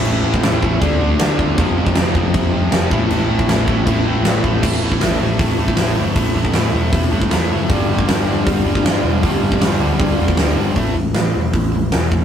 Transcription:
<<
  \new Staff \with { instrumentName = "Distorted electric guitar" } { \clef bass \time 4/4 \key g \lydian \tempo 4 = 157 <a, e a>8 <a, e a>8 <a, e a>8 <a, e a>8 <d a d'>8 <d a d'>8 <d a d'>8 <d a d'>8 | <f, c f>8 <f, c f>8 <f, c f>8 <f, c f>8 <f, c f>8 <f, c f>8 <f, c f>8 <a, e a>8 | <a, e a>8 <a, e a>8 <a, e a>8 <a, e a>8 <a, e a>8 <a, e a>8 <a, e a>8 <a, e a>8 | <a, e a>8 <a, e a>8 <a, e a>8 <a, e a>8 <a, e a>8 <a, e a>8 <a, e a>8 <a, e a>8 |
<a, e a>8 <a, e a>8 <a, e a>8 <a, e a>8 <a, e a>8 <a, e a>8 <a, e a>8 <a, e a>8 | <g, d g>8 <g, d g>8 <g, d g>8 <g, d g>8 <g, d g>8 <g, d g>8 <g, d g>8 <g, d g>8 | <g, d g>8 <g, d g>8 <g, d g>8 <g, d g>8 <g, d g>8 <g, d g>8 <g, d g>8 <g, d g>8 | <a, e a>8 <a, e>8 <a, e>8 <a, e>8 <a, e>8 <a, e>8 <a, e>8 <a, e>8 | }
  \new Staff \with { instrumentName = "Distorted electric guitar" } { \clef bass \time 4/4 \key g \lydian <a, e a>2 <d a d'>2 | <f, c f>2.~ <f, c f>8 <a, e a>8~ | <a, e a>2 <a, e a>2 | r1 |
r1 | <g, d g>1 | <g, d g>1 | r1 | }
  \new Staff \with { instrumentName = "Overdriven electric guitar" } { \clef bass \time 4/4 \key g \lydian <a, e a>8 <a, e a>8 <a, e a>8 <a, e a>8 <d a d'>8 <d a d'>8 <d a d'>8 <d a d'>8 | <f, c f>8 <f, c f>8 <f, c f>8 <f, c f>8 <f, c f>8 <f, c f>8 <f, c f>8 <a, e a>8 | <a, e a>8 <a, e a>8 <a, e a>8 <a, e a>8 <a, e a>8 <a, e a>8 <a, e a>8 <a, e a>8 | <a, e a>8 <a, e a>8 <a, e a>8 <a, e a>8 <a, e a>8 <a, e a>8 <a, e a>8 <a, e a>8 |
<a, e a>8 <a, e a>8 <a, e a>8 <a, e a>8 <a, e a>8 <a, e a>8 <a, e a>8 <a, e a>8 | <g, d g>8 <g, d g>8 <g, d g>8 <g, d g>8 <g, d g>8 <g, d g>8 <g, d g>8 <g, d g>8 | <g, d g>8 <g, d g>8 <g, d g>8 <g, d g>8 <g, d g>8 <g, d g>8 <g, d g>8 <g, d g>8 | <a, e a>8 <a, e>8 <a, e>8 <a, e>8 <a, e>8 <a, e>8 <a, e>8 <a, e>8 | }
  \new Staff \with { instrumentName = "Picked electric bass" } { \clef bass \time 4/4 \key g \lydian a,,8 a,,8 a,,8 a,,8 d,8 d,8 d,8 d,8 | f,,8 f,,8 f,,8 f,,8 f,,8 f,,8 f,,8 a,,8 | a,,8 a,,8 a,,8 a,,8 a,,8 a,,8 a,,8 a,,8 | a,,8 a,,8 a,,8 a,,8 a,,8 a,8 a,,8 g,,8 |
a,,8 a,,8 a,,8 e,,8 e,,8 g,8 e,8 fis,,8 | g,,8 g,,8 g,,8 g,,8 g,,8 g,8 g,,8 e,,8 | g,,8 g,,8 g,,8 d,8 d,8 e,8 d,8 g,,8 | a,,8 a,,8 a,,8 e,,8 a,,4 e,,8 e,,8 | }
  \new DrumStaff \with { instrumentName = "Drums" } \drummode { \time 4/4 cymc8. bd16 <cymc sn>8 bd8 <cymc bd>4 <cymc sn>8 bd8 | <cymc bd>8. bd16 <cymc sn>8 bd8 <cymc bd>4 <cymc sn>8 bd8 | cymc8. bd16 <cymc sn>8 bd8 <cymc bd>4 <cymc sn>8 bd8 | <cymc bd>8. bd16 <hho sn>4 <hho bd>8. bd16 <hho sn>4 |
<hho bd>8. bd16 <hho sn>4 <hho bd>8. bd16 <hho sn>4 | <hho bd>8. bd16 <hho sn>4 <hho bd>8. bd16 <hho sn>4 | <hho bd>8. bd16 <hho sn>4 <hho bd>8. bd16 <hho sn>4 | <hho bd>4 <hho sn>4 <hho bd>4 <hho sn>8 bd8 | }
>>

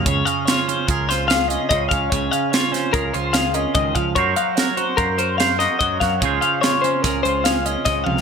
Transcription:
<<
  \new Staff \with { instrumentName = "Clean electric guitar" } { \time 5/4 \key des \major \tempo 4 = 146 des''8 f''8 des''8 c''8 bes'8 c''8 f''8 ees''8 ees''8 f''8 | des''8 f''8 des''8 c''8 bes'8 c''8 f''8 ees''8 ees''8 f''8 | des''8 f''8 des''8 c''8 bes'8 c''8 f''8 ees''8 ees''8 f''8 | des''8 f''8 des''8 c''8 bes'8 c''8 f''8 ees''8 ees''8 f''8 | }
  \new Staff \with { instrumentName = "Clean electric guitar" } { \time 5/4 \key des \major << { r4 f'4 aes'8 f'8 aes'2 | r4 f'4 aes'8 f'8 aes'2 | <ges' bes' c''>4 bes'4 c''8 bes'8 c''2 | <des' f' aes' c''>4 f'4 aes'8 f'8 aes'2 | } \\ { des8 des'4 des'2 des'8 des8 des'8 | des8 des'4 des'2 des'8 ees8 f8 | ges8 ges'4 ges'2 ges'8 ges8 ges'8 | des8 des'4 des'2 des'8 des8 c8 | } >> }
  \new Staff \with { instrumentName = "Picked electric bass" } { \clef bass \time 5/4 \key des \major des,8 r4. des,2 des,8 des,8 | des,8 r4. des,8 des,4. des,8 des,8 | ges,8 r4. ges,2 ges,8 ges,8 | des,8 r4. des,8 des,4. des,8 des,8 | }
  \new DrumStaff \with { instrumentName = "Drums" } \drummode { \time 5/4 <hh bd>8 hh8 <hh sn>8 hh8 <hh bd>8 <hh sn>8 <hh sn>8 hh8 <hh bd>8 <hh bd>8 | <hh bd>8 hh8 <hh sn>8 <hh sn>8 <hh bd>8 hh8 <hh sn>8 hh8 <hh bd>8 <hh bd>8 | <hh bd>8 hh8 <hh sn>8 hh8 <hh bd>8 hh8 <hh sn>8 <hh sn>8 <hh bd>8 <hh bd sn>8 | <hh bd>8 hh8 <hh sn>8 hh8 <hh bd sn>8 hh8 <hh sn>8 hh8 <hh bd sn>8 tommh8 | }
>>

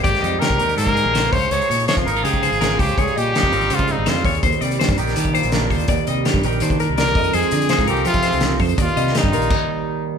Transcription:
<<
  \new Staff \with { instrumentName = "Clean electric guitar" } { \time 4/4 \key ees \major \tempo 4 = 165 d''8 ees''8 g'8 bes'8 c''8 aes'8 c''8 des''8 | c''8 des''8 c''8 bes'8 g'8 c''8 bes'8 c''8 | des''8 ees''8 g'8 bes'8 c''8 aes'8 c''8 des''8 | c''8 d''8 c''8 bes'8 g'8 c''8 bes'8 c''8 |
d''8 ees''8 g'8 bes'8 c''8 bes'8 d''8 ees''8 | c''8 d''8 c''8 bes'8 g'8 c''8 bes'8 c''8 | d''8 ees''8 g'8 bes'8 r2 | }
  \new Staff \with { instrumentName = "Trumpet" } { \time 4/4 \key ees \major g'4 bes'4 bes'4. c''8 | des''4 des''8 bes'8 aes'4. g'8 | aes'8 g'4. f'8 ees'8 f'8. r16 | r1 |
r2. bes'4 | aes'4. g'8 f'4. r8 | f'4 ees'2~ ees'8 r8 | }
  \new Staff \with { instrumentName = "Clean electric guitar" } { \clef bass \time 4/4 \key ees \major << { <g bes>8 g4 g'8 bes4 bes8 r8 | ees'4 f'8 ees'16 f'16 ees'8 f'4 r8 | g4 ees'8 c'8 g8 c'4 r8 | r8 g4 g'8 d'8 g8 d'4 |
r8 g4 g'8 d'4. r8 | aes4 ees'8 c'8 aes8 c'4 r8 | r8 g4 f'8 r2 | } \\ { aes,4. ees4 ees4 des8~ | des4 f4 aes,4. des8~ | des4 f4 aes,4. des8 | ees,4. ees4 bes,4. |
ees,4. ees4. ees,8 f,8~ | f,4 f4 c4. f,8 | ees,4. ees2~ ees8 | } >> }
  \new Staff \with { instrumentName = "Fingered electric bass" } { \clef bass \time 4/4 \key ees \major aes,,16 r16 f,8 r16 c,16 ees,8 aes,8. bes,,8. des,8 | des,16 r16 bes,8 r16 f,16 aes,,8 des8. aes,,8. des,8 | des,16 r16 bes,8 r16 f,16 aes,,8 des8. aes,,16 f,8 ees,8 | ees,16 r16 c8 r16 g,16 bes,,8 ees8. bes,,8. ees,8 |
ees,16 r16 c8 r16 g,16 bes,,8 ees8. c,8. f,8 | f,16 r16 d8 r16 aes,16 c,8 f8. c,8. f,8 | ees,16 r16 c8 r16 g,16 bes,,8 r2 | }
  \new DrumStaff \with { instrumentName = "Drums" } \drummode { \time 4/4 <hh bd>16 <hh sn>16 hh8 <hh sn>16 bd16 hh16 hh16 hh16 <hh bd>16 hh8 <hh sn>16 hh16 <hho bd>16 hh16 | hh16 hh16 hh16 hh16 <hh sn>16 <hh bd>16 hh16 hh16 hh16 <hh bd>16 hh16 hh16 <hh sn>8 <hho bd>16 hh16 | <hh bd>16 hh16 hh8 <hh sn>16 bd16 hh16 hh16 hh16 bd16 hh8 <hh sn>16 hh16 <hho bd>16 hh16 | <hh bd>16 hh16 hh16 hh16 <hh sn>16 <hh bd>16 hh16 <hh sn>16 hh16 <hh bd>16 hh16 hh16 <hh sn>8 <hho bd>16 hh16 |
<hh bd>16 hh16 hh8 <hh sn>16 bd16 hh16 hh16 hh16 <hh bd>16 hh8 <hh sn>16 hh16 <hho bd>16 hh16 | hh16 hh16 hh16 hh16 <hh sn>16 <hh bd>16 hh16 hh16 hh16 <hh bd>16 <hh sn>16 hh16 <hh sn>8 <hho bd>16 hh16 | <hh bd>16 hh16 hh16 sn16 <hh sn>16 bd16 hh16 hh16 <cymc bd>4 r4 | }
>>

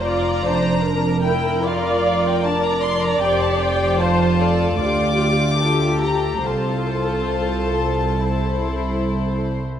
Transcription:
<<
  \new Staff \with { instrumentName = "Violin section" } { \time 4/4 \key f \major \tempo 4 = 74 bes''4. g''8 f''8. g''16 a''16 bes''16 c'''16 bes''16 | g''16 a''16 g''8 a''4 d'''4. bes''8 | a''2.~ a''8 r8 | }
  \new Staff \with { instrumentName = "Viola section" } { \time 4/4 \key f \major d''8 c''8 bes'4 d''4 d''4~ | d''4 c''8 a'8 g'4 f'8 g'8 | a'2.~ a'8 r8 | }
  \new Staff \with { instrumentName = "Violin section" } { \time 4/4 \key f \major << { d''4 bes'2. | c''4 c''8 d''8 d''4 a'4 | c''2 c''4.~ c''16 r16 | } \\ { f'8 d'8 d'8 e'8 f'4 d'4 | g'4 f'4 f'4 g'4 | f'2 e'4.~ e'16 r16 | } >> }
  \new Staff \with { instrumentName = "Cello section" } { \clef bass \time 4/4 \key f \major f,1 | f,2 d,2 | c,2.~ c,8. r16 | }
  \new Staff \with { instrumentName = "Double bass section" } { \clef bass \time 4/4 \key f \major f,,1 | f,,2 d,2 | c,2.~ c,8. r16 | }
>>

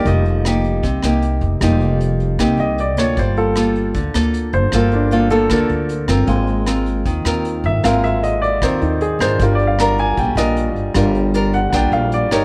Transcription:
<<
  \new Staff \with { instrumentName = "Grand piano" } { \time 4/4 \key g \phrygian \tempo 4 = 154 << { ees''2 r2 | r2 r8 ees''8 d''8 cis''8 | c''8 a'8 r2 r8 c''8 | bes'8 d'8 f'8 a'8 bes'2~ |
bes'4 r2 r8 e''8 | f''8 e''8 ees''8 d''8 c''8 ees'8 aes'8 c''8 | \tuplet 3/2 { bes'8 d''8 f''8 } bes''8 aes''8 g''8 ees''8 r4 | r4. fis''8 <fis'' g''>8 f''8 d''8 cis''8 | } \\ { <g bes ees'>4. r2 r8 | <g bes ees'>1 | r8 <bes f'>8 r2. | <bes f'>4. <a bes f'>8 r2 |
<bes c' f'>8 r2. r8 | <bes c' f'>1 | <g d' f'>8 r2. r8 | <g d' f'>8 r2. r8 | } >> }
  \new Staff \with { instrumentName = "Nylon-string guitar" } { \time 4/4 \key g \phrygian << { <bes ees' g'>8 r8 <bes ees' g'>4 r8 <bes ees' g'>4. | <bes ees' g'>2 <bes ees' g'>4 r8 <bes f' a'>8~ | <bes f' a'>4 <bes f' a'>4 r8 <bes f' a'>4. | <bes f' a'>4 <bes f' a'>8 <bes f' a'>8 <bes f' a'>4 r8 <c' f' bes'>8~ |
<c' f' bes'>4 <c' f' bes'>4. <c' f' bes'>4. | <c' f' bes'>4. r8 <c' f' bes'>4 r8 <d' f' bes'>8~ | <d' f' bes'>4 <d' f' bes'>4 r8 <d' f' bes'>4. | <d' f' bes'>4 <d' f' bes'>8 r8 <d' f' bes'>4. <ees' g' bes'>8 | } \\ { f2 c2 | f2 c2 | g2 d2 | g2 d2 |
aes2 ees2 | aes2 ees2 | g2 g2 | g2 g2 | } >> }
  \new Staff \with { instrumentName = "Upright bass" } { \clef bass \time 4/4 \key g \phrygian f,,2 c,8 c,4 f,,8 | f,,2 c,8 c,4 d,8 | g,,2 d,8 d,4 g,,8 | g,,2 d,8 d,4 g,,8 |
aes,,2 ees,8 ees,4 aes,,8 | aes,,2 ees,8 ees,4 aes,,8 | g,,2 bes,,8 bes,,4 g,,8 | g,,2 bes,,8 bes,,4 g,,8 | }
  \new DrumStaff \with { instrumentName = "Drums" } \drummode { \time 4/4 <hh bd>8 hh8 <hh ss>8 hh8 <hh bd>8 <hh ss>8 hh8 hh8 | <hh bd ss>8 hh8 hh8 hh8 <hh bd ss>8 hh8 hh8 <hh ss>8 | <hh bd>8 hh8 <hh ss>8 hh8 <hh bd>8 <hh ss>8 hh8 hh8 | <hh bd ss>8 hh8 hh8 hh8 <hh bd ss>8 hh8 hh8 ss8 |
<hh bd>8 hh8 <hh ss>8 hh8 <hh bd>8 ss8 hh8 hh8 | <hh bd ss>8 hh8 hh8 hh8 <hh bd ss>8 hh8 hh8 <hh ss>8 | <hh bd>8 hh8 <hh ss>8 hh8 <hh bd>8 <hh ss>8 hh8 hh8 | <hh bd ss>8 hh8 hh8 hh8 <hh bd ss>8 hh8 hh8 ss8 | }
>>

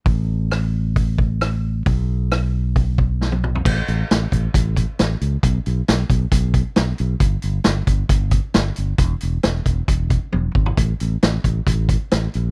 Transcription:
<<
  \new Staff \with { instrumentName = "Fingered electric bass" } { \clef bass \time 4/4 \key b \mixolydian \tempo 4 = 135 a,,1 | b,,1 | a,,8 a,,8 a,,8 a,,8 a,,4 a,,8 cis,8 | b,,8 b,,8 b,,8 b,,8 b,,4 b,,8 b,,8 |
g,,8 g,,8 g,,8 g,,8 g,,4 g,,8 g,,8 | e,,8 e,,8 e,,8 e,,8 e,,4 e,,8 gis,,8 | a,,8 a,,8 a,,8 a,,8 a,,4 a,,8 bes,,8 | }
  \new DrumStaff \with { instrumentName = "Drums" } \drummode { \time 4/4 <hho bd>4 <hho ss>4 <hho bd>8 bd8 <hho ss>4 | <hho bd>4 <hho ss>4 <hho bd>8 bd8 sn16 tommh16 toml16 tomfh16 | <cymc bd>8 hh8 <hh sn>8 <hh bd>8 <hh bd>8 <hh bd>8 <hh sn>8 hh8 | <hh bd>8 hh8 <hh sn>8 <hh bd>8 <hh bd>8 <hh bd>8 <hh sn>8 hh8 |
<hh bd>8 hh8 <hh sn>8 <hh bd>8 <hh bd>8 <hh bd>8 <hh sn>8 hh8 | <hh bd>8 hh8 <hh sn>8 <hh bd>8 <hh bd>8 <hh bd>8 tommh8 bd16 tomfh16 | <hh bd>8 hh8 <hh sn>8 <hh bd>8 <hh bd>8 <hh bd>8 <hh sn>8 hh8 | }
>>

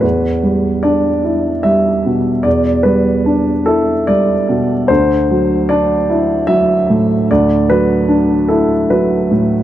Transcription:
<<
  \new Staff \with { instrumentName = "Grand piano" } { \time 3/4 \key e \minor \tempo 4 = 75 b'4 d''4 e''4 | d''8 b'4 a'8 d''4 | c''4 d''4 e''4 | d''8 b'4 a'8 b'8 r8 | }
  \new Staff \with { instrumentName = "Grand piano" } { \clef bass \time 3/4 \key e \minor e,8 g8 d'8 e'8 g8 b,8 | e,8 g8 d'8 e'8 g8 b,8 | d,8 fis8 d'8 e'8 fis8 a,8 | d,8 fis8 d'8 e'8 fis8 a,8 | }
>>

